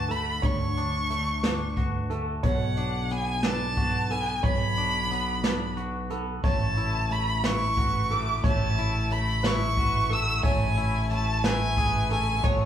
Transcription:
0.00 0.39 D2 medium
0.00 0.10 D3 medium
0.00 0.77 D4 medium
0.00 1.77 F#4 soft
0.00 0.12 A5 medium
0.08 1.09 A3 medium
0.08 0.43 A4 medium
0.08 0.47 B5 medium
0.08 closed hi-hat medium
0.42 2.40 D2 medium
0.42 2.11 D3 medium
0.42 1.10 C#5 medium
0.42 1.78 C#6 medium
0.42 kick medium
0.42 closed hi-hat medium
0.77 1.43 D4 medium
0.77 closed hi-hat medium
1.10 2.09 A3 medium
1.10 closed hi-hat medium
1.43 2.77 D4 medium
1.43 2.10 B4 medium
1.43 snare medium
1.43 closed hi-hat medium
1.77 3.77 F#4 medium
1.77 kick medium
1.77 closed hi-hat medium
2.10 2.44 A3 medium
2.10 2.43 A4 medium
2.10 closed hi-hat soft
2.43 4.40 B1 medium
2.43 4.11 B2 medium
2.43 3.10 C#5 medium
2.43 3.13 F#5 medium
2.43 kick medium
2.43 closed hi-hat medium
2.77 3.43 D4 medium
2.77 closed hi-hat soft
3.10 4.10 B3 medium
3.10 3.48 G#5 medium
3.10 closed hi-hat medium
3.43 4.76 D4 medium
3.43 4.11 B4 medium
3.43 4.13 A5 medium
3.43 snare medium
3.43 closed hi-hat medium
3.77 5.77 F#4 medium
3.77 kick medium
3.77 closed hi-hat soft
4.10 5.10 B3 medium
4.10 4.44 A4 medium
4.10 4.44 G#5 medium
4.10 closed hi-hat soft
4.43 6.40 B1 medium
4.43 6.11 B2 medium
4.43 5.10 C#5 medium
4.43 5.74 B5 medium
4.43 kick medium
4.43 closed hi-hat medium
4.77 5.42 D4 medium
4.77 closed hi-hat soft
5.11 6.10 B3 medium
5.11 closed hi-hat medium
5.43 6.44 D4 medium
5.43 6.11 B4 medium
5.43 snare medium
5.43 closed hi-hat medium
5.77 6.80 F#4 medium
5.77 closed hi-hat soft
6.10 6.43 B3 medium
6.10 6.44 A4 medium
6.10 closed hi-hat medium
6.43 8.40 A1 medium
6.43 12.65 C#3 medium
6.43 10.40 F#3 medium
6.43 12.65 A3 medium
6.43 7.10 A3 medium
6.43 12.40 E4 medium
6.43 7.11 C#5 medium
6.43 7.14 A5 medium
6.43 kick medium
6.43 closed hi-hat medium
6.77 7.45 E4 medium
6.77 closed hi-hat medium
7.10 8.12 A3 medium
7.10 7.47 B5 medium
7.10 closed hi-hat medium
7.44 8.78 E4 medium
7.44 8.11 B4 medium
7.44 8.13 C#6 medium
7.44 snare medium
7.44 closed hi-hat medium
7.77 9.45 F#4 medium
7.77 kick medium
7.77 closed hi-hat medium
8.11 8.45 A3 medium
8.11 8.44 A4 medium
8.11 8.45 D6 medium
8.11 closed hi-hat medium
8.44 10.40 A1 medium
8.44 9.11 A3 medium
8.44 9.11 C#5 medium
8.44 9.14 A5 medium
8.44 kick medium
8.44 closed hi-hat medium
8.78 9.44 E4 medium
8.78 closed hi-hat medium
9.11 10.10 A3 medium
9.11 9.47 B5 medium
9.11 closed hi-hat soft
9.43 10.77 E4 medium
9.43 10.11 B4 medium
9.43 10.14 C#6 medium
9.43 snare medium
9.43 closed hi-hat medium
9.77 10.45 F#4 medium
9.77 kick medium
9.77 closed hi-hat soft
10.10 10.44 A3 medium
10.10 10.44 A4 medium
10.10 10.44 E6 medium
10.10 closed hi-hat soft
10.43 12.40 A1 medium
10.43 12.65 E3 medium
10.43 11.11 A3 medium
10.43 11.11 C#5 medium
10.43 11.07 G#5 medium
10.43 kick medium
10.43 closed hi-hat medium
10.77 11.44 E4 medium
10.77 closed hi-hat medium
11.10 12.11 A3 medium
11.10 11.46 A5 medium
11.10 closed hi-hat medium
11.44 12.65 E4 medium
11.44 12.11 B4 medium
11.44 12.11 G#5 medium
11.44 snare medium
11.44 closed hi-hat medium
11.77 12.65 G#4 medium
11.77 kick medium
11.77 closed hi-hat soft
12.10 12.43 A3 medium
12.10 12.44 A4 medium
12.10 12.46 G#5 medium
12.10 closed hi-hat medium
12.43 12.65 A1 medium
12.43 12.65 A3 medium
12.43 12.65 F#4 medium
12.43 12.65 C#5 medium
12.43 kick medium
12.43 closed hi-hat medium

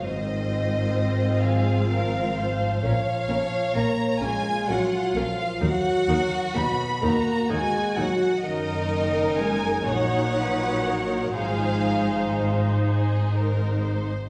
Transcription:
0.04 2.79 G#1 medium
0.04 2.79 G#2 soft
0.04 1.42 D#3 medium
0.04 2.79 C4 medium
0.04 2.79 F4 medium
0.04 1.41 C5 medium
0.04 1.42 D#5 medium
1.44 2.82 F3 medium
1.44 1.91 G#4 medium
1.44 2.82 F5 medium
1.90 2.36 A#4 medium
2.37 2.83 C5 medium
2.82 2.91 A#1 medium
2.82 2.91 A#2 medium
2.82 3.74 F3 medium
2.82 2.90 C#4 medium
2.82 2.90 A#4 medium
2.82 4.22 C#5 medium
2.82 3.74 F5 medium
3.28 3.36 A#1 medium
3.28 3.37 A#2 medium
3.28 3.37 C#4 soft
3.28 3.37 A#4 soft
3.74 3.83 A#1 medium
3.74 3.83 A#2 medium
3.74 4.22 A#3 medium
3.74 3.83 C#4 medium
3.74 3.82 A#4 soft
3.74 4.22 A#5 medium
4.20 4.30 A#1 medium
4.20 4.30 A#2 medium
4.20 4.69 G#3 medium
4.20 4.28 C#4 medium
4.20 5.61 F4 medium
4.20 4.28 A#4 medium
4.20 4.68 G#5 medium
4.68 4.77 A#1 medium
4.68 4.76 A#2 medium
4.68 5.14 F#3 medium
4.68 4.77 C#4 soft
4.68 4.76 A#4 soft
4.68 5.14 F#5 medium
5.14 5.23 A#1 medium
5.14 5.22 A#2 medium
5.14 5.60 F3 medium
5.14 5.24 C#4 soft
5.14 5.24 A#4 medium
5.14 5.61 F5 medium
5.60 5.68 D#2 medium
5.60 5.69 D#2 medium
5.60 6.55 F#3 medium
5.60 5.69 D#4 medium
5.60 7.01 F#4 medium
5.60 5.69 A#4 medium
5.60 6.55 F#5 medium
6.08 6.16 D#2 medium
6.08 6.16 D#4 medium
6.08 6.16 A#4 medium
6.54 6.63 D#2 medium
6.54 7.03 B2 medium
6.54 6.62 A#3 medium
6.54 6.62 D#4 soft
6.54 7.03 B5 medium
7.02 7.11 D#2 medium
7.02 7.50 A#3 medium
7.02 7.10 D#4 medium
7.02 8.42 F#4 medium
7.02 7.10 A#4 medium
7.02 7.51 A#5 medium
7.49 7.58 D#2 medium
7.49 7.59 D#2 medium
7.49 7.97 G#3 medium
7.49 7.57 D#4 medium
7.49 7.57 A#4 medium
7.49 7.97 G#5 medium
7.96 8.05 D#2 medium
7.96 8.06 D#2 medium
7.96 8.30 F#3 medium
7.96 8.04 D#4 medium
7.96 8.05 A#4 medium
7.96 8.45 F#5 medium
8.43 9.83 F#1 medium
8.43 9.84 F#2 medium
8.43 9.38 D#3 medium
8.43 9.83 D#4 medium
8.43 9.83 A#4 medium
8.43 9.85 A#4 medium
8.43 9.39 D#5 medium
9.39 9.88 G#3 medium
9.39 9.87 G#5 medium
9.86 11.35 A#1 medium
9.86 11.35 A#2 medium
9.86 11.34 F#3 medium
9.86 11.32 D#4 medium
9.86 11.32 C#5 medium
9.86 10.36 C#5 medium
9.86 11.35 F#5 medium
10.37 10.86 B4 medium
10.86 11.36 A#4 medium
11.33 14.08 G#1 medium
11.33 14.08 G#2 medium
11.33 12.82 F3 medium
11.33 14.09 D#4 medium
11.33 12.73 G#4 medium
11.33 14.08 C5 medium
11.33 12.82 F5 medium
12.85 13.31 G#4 medium
13.34 13.84 A#4 medium
13.83 14.29 C5 medium

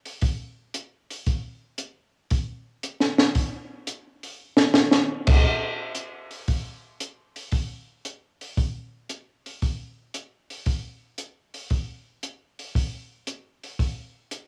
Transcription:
0.05 open hi-hat soft
0.21 kick soft
0.21 open hi-hat medium
0.74 closed hi-hat medium
1.11 open hi-hat soft
1.26 kick soft
1.26 open hi-hat soft
1.78 closed hi-hat medium
2.30 kick soft
2.30 open hi-hat medium
2.83 closed hi-hat medium
3.00 snare soft
3.18 snare medium
3.35 kick soft
3.35 open hi-hat soft
3.87 closed hi-hat medium
4.23 open hi-hat soft
4.57 snare medium
4.74 snare medium
4.91 snare medium
5.27 kick medium
5.27 crash medium
5.44 kick soft
5.95 closed hi-hat medium
6.31 open hi-hat soft
6.48 kick soft
6.48 open hi-hat soft
7.00 closed hi-hat medium
7.36 open hi-hat soft
7.52 kick soft
7.52 open hi-hat soft
8.05 closed hi-hat medium
8.41 open hi-hat soft
8.57 kick soft
8.57 open hi-hat soft
9.09 closed hi-hat medium
9.46 open hi-hat soft
9.62 kick soft
9.62 open hi-hat soft
10.14 closed hi-hat medium
10.50 open hi-hat soft
10.66 kick soft
10.66 open hi-hat soft
11.18 closed hi-hat soft
11.54 open hi-hat soft
11.70 kick soft
11.70 open hi-hat soft
12.23 closed hi-hat soft
12.59 open hi-hat soft
12.75 kick soft
12.75 open hi-hat soft
13.27 closed hi-hat medium
13.64 open hi-hat soft
13.79 kick soft
13.79 open hi-hat soft
14.31 closed hi-hat medium

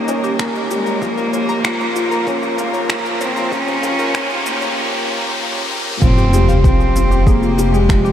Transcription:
0.00 0.98 D#3 medium
0.00 1.04 D#3 medium
0.00 0.71 G3 loud
0.00 0.35 A#3 medium
0.00 0.39 A#3 medium
0.00 5.98 A#3 medium
0.00 0.08 C#4 medium
0.00 0.98 C#4 medium
0.00 0.98 G4 medium
0.00 5.98 A#4 medium
0.00 riser medium
0.08 0.38 C#4 loud
0.08 0.15 D#4 medium
0.08 shaker medium
0.24 0.30 G4 loud
0.24 shaker soft
0.39 0.57 A#3 medium
0.39 0.49 A#4 medium
0.39 finger snap medium
0.39 kick loud
0.39 shaker soft
0.55 0.61 D#4 medium
0.55 shaker soft
0.70 0.89 G3 loud
0.70 1.03 G#3 loud
0.70 0.77 G4 medium
0.70 shaker medium
0.86 0.93 A#4 medium
0.86 shaker soft
1.02 5.98 C#3 medium
1.02 1.20 F3 medium
1.02 5.98 F3 medium
1.02 2.26 A#3 loud
1.02 1.08 F4 medium
1.02 3.50 F4 medium
1.02 kick medium
1.02 shaker soft
1.17 1.21 A#4 loud
1.17 shaker soft
1.33 1.63 A#3 medium
1.33 1.40 C#5 medium
1.33 shaker medium
1.49 1.53 A#5 loud
1.49 shaker soft
1.64 1.94 F4 medium
1.64 1.74 A#4 medium
1.64 finger snap loud
1.64 kick loud
1.64 shaker soft
1.80 1.84 C#5 medium
1.80 shaker soft
1.96 2.02 F4 medium
1.96 2.25 F4 loud
1.96 shaker medium
2.11 2.18 A#4 loud
2.11 shaker soft
2.27 2.85 A#3 loud
2.27 2.45 C#4 medium
2.27 2.37 C#5 medium
2.27 kick loud
2.27 shaker soft
2.43 2.49 F4 medium
2.43 shaker soft
2.58 2.76 A#3 loud
2.58 2.65 A#4 medium
2.58 shaker medium
2.74 2.80 C#5 medium
2.74 shaker soft
2.89 3.07 F3 medium
2.89 2.96 F4 medium
2.89 finger snap loud
2.89 kick medium
2.89 shaker soft
3.05 3.09 A#4 loud
3.05 shaker soft
3.21 3.51 A#3 medium
3.21 3.54 C4 loud
3.21 3.27 C#5 medium
3.21 shaker medium
3.36 3.40 A#5 loud
3.36 shaker soft
3.52 4.77 C#4 loud
3.52 3.82 F4 medium
3.52 6.00 G4 medium
3.52 3.62 A#4 medium
3.52 kick loud
3.52 shaker soft
3.68 3.71 C#5 medium
3.68 shaker soft
3.83 4.13 F4 loud
3.83 3.90 F4 medium
3.83 shaker medium
3.99 4.05 A#4 loud
3.99 shaker soft
4.14 4.32 C#4 medium
4.14 4.24 C#5 medium
4.14 finger snap medium
4.14 kick loud
4.14 shaker soft
4.30 4.37 F4 medium
4.30 shaker soft
4.46 4.63 A#3 loud
4.46 4.52 A#4 medium
4.46 shaker medium
4.61 4.68 C#5 medium
4.61 shaker soft
6.02 8.12 F1 medium
6.02 8.12 C3 medium
6.02 6.20 F3 medium
6.02 6.60 C4 loud
6.02 6.08 F4 medium
6.02 8.12 F4 medium
6.02 8.12 G4 medium
6.02 kick loud
6.02 sub drop medium
6.02 shaker soft
6.17 6.21 G4 loud
6.17 shaker soft
6.33 6.63 G3 medium
6.33 6.40 G#4 medium
6.33 shaker medium
6.49 6.53 F5 loud
6.49 shaker soft
6.64 7.28 C4 medium
6.64 6.94 C4 medium
6.64 6.74 G4 medium
6.64 kick loud
6.64 shaker soft
6.80 6.84 G#4 medium
6.80 shaker soft
6.95 7.25 C4 medium
6.95 7.02 F4 medium
6.95 shaker medium
7.11 7.18 G4 loud
7.11 shaker soft
7.27 7.45 G#3 medium
7.27 7.75 A#3 loud
7.27 7.37 G#4 medium
7.27 kick loud
7.27 shaker soft
7.43 7.49 F4 medium
7.43 shaker soft
7.58 7.76 G3 loud
7.58 7.65 G4 medium
7.58 shaker medium
7.74 8.12 G#3 loud
7.74 7.80 G#4 medium
7.74 shaker soft
7.89 8.07 F3 medium
7.89 7.96 F4 medium
7.89 finger snap medium
7.89 kick loud
7.89 shaker soft
8.05 8.09 G4 loud
8.05 shaker soft

